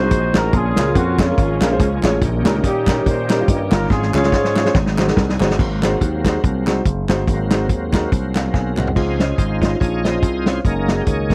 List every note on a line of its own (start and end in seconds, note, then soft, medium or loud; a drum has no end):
0.00 0.11 C2 medium
0.00 0.31 G#2 medium
0.00 0.50 F#3 medium
0.00 0.17 G#3 medium
0.00 0.50 C4 medium
0.00 0.50 D#4 medium
0.00 0.17 D#4 medium
0.00 0.50 F#4 medium
0.00 0.17 F#4 medium
0.00 0.50 G#4 medium
0.00 0.36 C5 loud
0.00 0.18 C5 medium
0.11 0.32 A#1 loud
0.11 kick loud
0.11 closed hi-hat medium
0.34 0.51 A1 medium
0.34 0.48 G#3 medium
0.34 0.49 D#4 medium
0.34 0.49 F#4 medium
0.34 0.54 A#4 loud
0.34 0.49 C5 medium
0.34 snare loud
0.34 clap medium
0.34 closed hi-hat medium
0.52 0.73 A#1 loud
0.52 1.16 A#2 medium
0.52 2.18 F3 medium
0.52 2.18 A#3 medium
0.52 2.18 C#4 medium
0.52 1.19 C#4 medium
0.52 1.19 F4 medium
0.52 0.59 G4 medium
0.52 0.96 G#4 loud
0.52 kick loud
0.52 closed hi-hat medium
0.57 2.20 G#4 medium
0.76 0.93 C#2 medium
0.76 0.84 G#3 medium
0.76 0.85 C#4 medium
0.76 0.85 F4 medium
0.76 0.85 A#4 medium
0.76 snare loud
0.76 clap loud
0.76 closed hi-hat medium
0.86 1.01 G#3 medium
0.86 1.01 C#4 medium
0.86 1.02 F4 medium
0.86 1.02 A#4 medium
0.95 1.31 F2 medium
0.95 1.20 F#4 medium
0.95 kick medium
0.95 closed hi-hat medium
1.18 1.26 G#3 medium
1.18 2.00 G#3 medium
1.18 1.26 C#4 medium
1.18 2.00 C#4 medium
1.18 2.04 F4 medium
1.18 1.27 F4 medium
1.18 1.27 C#5 medium
1.18 kick medium
1.18 snare loud
1.18 clap medium
1.18 closed hi-hat medium
1.29 1.43 G#3 medium
1.29 1.44 C#4 medium
1.29 1.44 F4 medium
1.29 1.44 A#4 medium
1.38 1.58 G#1 medium
1.38 kick loud
1.38 closed hi-hat medium
1.61 1.77 A#1 medium
1.61 1.68 G#3 medium
1.61 1.68 C#4 medium
1.61 1.69 F4 medium
1.61 1.69 A#4 medium
1.61 snare loud
1.61 clap loud
1.61 closed hi-hat medium
1.70 1.85 G#3 medium
1.70 1.86 C#4 medium
1.70 1.86 F4 medium
1.70 1.86 C5 medium
1.79 2.00 C#2 medium
1.79 kick loud
1.79 closed hi-hat medium
2.03 2.19 A1 medium
2.03 2.17 G#3 medium
2.03 2.17 C#4 medium
2.03 2.17 F4 medium
2.03 2.18 C#5 loud
2.03 snare loud
2.03 clap medium
2.03 closed hi-hat medium
2.21 2.42 A#1 loud
2.21 2.84 A#2 medium
2.21 3.87 D#3 medium
2.21 3.87 A#3 medium
2.21 3.87 C#4 medium
2.21 3.87 G4 medium
2.21 kick loud
2.21 closed hi-hat medium
2.45 2.61 C#2 medium
2.45 2.52 G3 medium
2.45 2.52 C#4 medium
2.45 2.53 D#4 medium
2.45 2.53 A#4 loud
2.45 snare loud
2.45 clap loud
2.45 closed hi-hat medium
2.54 2.69 G3 medium
2.54 2.70 C#4 medium
2.54 2.70 D#4 medium
2.54 2.70 A#4 medium
2.64 3.00 A#2 medium
2.64 3.44 C#4 medium
2.64 3.05 D#4 medium
2.64 3.04 G4 medium
2.64 kick medium
2.64 closed hi-hat medium
2.87 2.94 G3 medium
2.87 2.95 C#4 medium
2.87 2.95 D#4 medium
2.87 2.95 A#4 medium
2.87 kick medium
2.87 snare loud
2.87 clap medium
2.87 closed hi-hat medium
2.97 3.12 G3 medium
2.97 3.12 C#4 medium
2.97 3.12 D#4 medium
2.97 3.12 A#4 medium
3.05 3.42 A#2 loud
3.05 3.86 D#4 medium
3.05 3.86 G4 medium
3.05 3.45 C5 loud
3.05 kick loud
3.05 closed hi-hat medium
3.29 3.36 G3 medium
3.29 3.36 C#4 medium
3.29 3.37 D#4 medium
3.29 3.37 A#4 medium
3.29 snare medium
3.29 clap medium
3.29 closed hi-hat medium
3.39 3.54 G3 medium
3.39 3.54 C#4 medium
3.39 3.54 D#4 medium
3.39 3.54 F4 medium
3.48 3.68 G2 medium
3.48 kick loud
3.48 closed hi-hat loud
3.72 3.87 G1 medium
3.72 3.85 G3 medium
3.72 3.86 C#4 medium
3.72 3.86 D#4 medium
3.72 3.86 F4 medium
3.72 3.89 A#4 medium
3.72 snare loud
3.72 clap medium
3.72 closed hi-hat medium
3.90 4.10 G#1 loud
3.90 4.52 G#2 medium
3.90 4.73 F3 medium
3.90 4.73 G#3 medium
3.90 4.71 C#4 medium
3.90 4.73 C#4 medium
3.90 4.14 F4 medium
3.90 4.14 G#4 medium
3.90 4.73 G#4 medium
3.90 kick loud
3.90 snare medium
4.02 snare soft
4.13 4.29 C#2 medium
4.13 4.20 G#3 medium
4.13 4.21 C#4 medium
4.13 4.21 F4 medium
4.13 4.71 F4 medium
4.13 4.71 G#4 medium
4.13 4.75 C#5 loud
4.13 4.21 C#5 medium
4.13 snare medium
4.13 clap medium
4.23 4.38 G#3 medium
4.23 4.38 C#4 medium
4.23 4.38 F4 medium
4.23 4.39 C#5 medium
4.23 snare medium
4.32 4.68 G#2 medium
4.32 kick medium
4.32 snare medium
4.44 snare medium
4.56 4.63 G#3 medium
4.56 4.63 C#4 medium
4.56 4.63 F4 medium
4.56 4.64 C#5 medium
4.56 snare medium
4.56 clap medium
4.64 4.74 G#3 medium
4.64 4.74 C#4 medium
4.64 4.74 F4 medium
4.64 4.75 C5 medium
4.64 snare medium
4.74 5.10 G#1 loud
4.74 5.36 G#2 medium
4.74 5.57 F#3 medium
4.74 5.57 C4 medium
4.74 5.57 D#4 medium
4.74 5.57 G#4 medium
4.74 kick loud
4.74 snare medium
4.86 snare medium
4.97 5.04 G#3 medium
4.97 5.04 D#4 medium
4.97 5.05 F#4 medium
4.97 5.05 C5 medium
4.97 snare medium
4.97 clap medium
5.07 5.22 G#3 medium
5.07 5.22 D#4 medium
5.07 5.22 F#4 medium
5.07 5.23 A#4 medium
5.07 snare medium
5.17 5.37 C2 medium
5.17 kick loud
5.17 snare medium
5.29 snare medium
5.39 5.56 G1 medium
5.39 5.53 G#3 medium
5.39 5.54 D#4 medium
5.39 5.54 F#4 medium
5.39 5.54 C5 loud
5.39 snare loud
5.39 clap medium
5.50 snare medium
5.58 5.95 G#1 loud
5.58 6.21 G#2 medium
5.58 6.43 F#3 medium
5.58 6.43 A#3 soft
5.58 8.93 C4 medium
5.58 6.44 C4 medium
5.58 8.93 D#4 medium
5.58 8.93 F#4 medium
5.58 8.93 G#4 medium
5.58 kick medium
5.58 crash medium
5.82 5.96 G#3 medium
5.82 5.96 D#4 medium
5.82 5.96 F#4 medium
5.82 5.97 C5 medium
5.82 snare medium
5.82 clap medium
5.82 closed hi-hat medium
6.01 6.37 D#2 medium
6.01 kick medium
6.01 closed hi-hat medium
6.25 6.38 G#3 medium
6.25 6.38 D#4 medium
6.25 6.39 F#4 medium
6.25 6.39 C5 medium
6.25 kick medium
6.25 snare loud
6.25 clap medium
6.25 closed hi-hat medium
6.44 6.79 C2 medium
6.44 6.65 F#3 soft
6.44 6.65 A#3 soft
6.44 6.66 C4 soft
6.44 kick loud
6.44 closed hi-hat medium
6.66 6.80 G#3 medium
6.66 6.80 D#4 medium
6.66 6.80 F#4 medium
6.66 6.81 C5 medium
6.66 snare medium
6.66 clap medium
6.66 closed hi-hat medium
6.85 7.06 F#1 medium
6.85 kick loud
6.85 closed hi-hat medium
7.08 7.25 G1 medium
7.08 7.22 G#3 medium
7.08 7.22 D#4 medium
7.08 7.23 F#4 medium
7.08 7.23 C5 medium
7.08 snare loud
7.08 clap medium
7.08 closed hi-hat medium
7.27 7.71 G#1 medium
7.27 7.90 G#2 medium
7.27 8.92 F#3 medium
7.27 8.92 A#3 soft
7.27 8.92 C4 medium
7.27 kick loud
7.27 closed hi-hat medium
7.51 7.64 G#3 medium
7.51 7.65 D#4 medium
7.51 7.65 F#4 medium
7.51 7.65 C5 medium
7.51 snare loud
7.51 clap medium
7.51 closed hi-hat medium
7.69 8.05 D#2 medium
7.69 kick medium
7.69 closed hi-hat medium
7.93 8.07 G#3 medium
7.93 8.07 D#4 medium
7.93 8.07 F#4 medium
7.93 8.07 A#4 medium
7.93 kick medium
7.93 snare loud
7.93 clap medium
7.93 closed hi-hat medium
8.12 8.48 C2 medium
8.12 kick loud
8.12 closed hi-hat medium
8.35 8.53 F5 medium
8.35 snare medium
8.35 clap medium
8.35 closed hi-hat medium
8.54 8.74 B1 medium
8.54 8.76 F5 medium
8.54 8.76 G#5 medium
8.54 kick medium
8.54 snare medium
8.77 8.93 C2 medium
8.77 9.18 D#5 soft
8.77 9.18 F#5 medium
8.77 clap medium
8.77 mid tom medium
8.87 floor tom medium
8.95 9.32 C#2 medium
8.95 9.58 C#3 medium
8.95 9.25 F3 medium
8.95 9.76 G#3 medium
8.95 10.63 C4 medium
8.95 9.25 C4 soft
8.95 10.62 C#4 medium
8.95 11.35 D#4 medium
8.95 9.26 D#4 medium
8.95 10.63 F4 medium
8.95 9.37 F4 medium
8.95 9.39 G#4 medium
8.95 kick loud
8.95 crash medium
9.19 9.33 C#4 medium
9.19 9.33 F4 medium
9.19 9.34 C5 medium
9.19 9.34 D#5 medium
9.19 snare medium
9.19 closed hi-hat medium
9.38 9.74 G#1 medium
9.38 10.19 D#4 medium
9.38 9.79 F4 medium
9.38 9.77 C5 medium
9.38 kick medium
9.38 closed hi-hat medium
9.61 9.75 C#4 medium
9.61 9.75 F4 medium
9.61 9.75 C5 medium
9.61 9.76 D#5 medium
9.61 kick medium
9.61 snare loud
9.61 closed hi-hat medium
9.80 10.17 A#1 medium
9.80 10.61 F4 medium
9.80 10.03 G#4 medium
9.80 10.05 C#5 medium
9.80 kick loud
9.80 closed hi-hat medium
10.04 10.17 C#4 medium
10.04 10.17 F4 medium
10.04 10.61 G#4 medium
10.04 10.18 C5 medium
10.04 10.61 C5 medium
10.04 10.47 D#5 loud
10.04 10.18 D#5 medium
10.04 snare medium
10.04 closed hi-hat medium
10.23 10.58 C2 medium
10.23 kick medium
10.23 closed hi-hat medium
10.45 10.59 C#4 medium
10.45 10.60 F4 medium
10.45 10.60 C5 medium
10.45 10.54 C#5 medium
10.45 10.60 F5 medium
10.45 snare loud
10.45 closed hi-hat medium
10.64 11.01 F#1 medium
10.64 11.35 G#3 medium
10.64 11.35 A#3 soft
10.64 11.35 C#4 medium
10.64 11.35 D#4 medium
10.64 11.35 F#4 medium
10.64 11.35 A#4 medium
10.64 11.02 A#4 medium
10.64 kick medium
10.64 closed hi-hat medium
10.88 11.02 A#3 medium
10.88 11.02 F#4 medium
10.88 11.02 G#4 medium
10.88 11.02 D#5 medium
10.88 snare medium
10.88 closed hi-hat medium
11.02 11.07 G4 medium
11.06 11.35 C#2 medium
11.06 11.35 D#3 medium
11.06 11.35 G#4 medium
11.06 11.35 C#5 medium
11.06 kick medium
11.06 closed hi-hat medium
11.30 11.35 A#3 medium
11.30 11.35 F#4 medium
11.30 11.35 G#4 medium
11.30 kick medium
11.30 closed hi-hat medium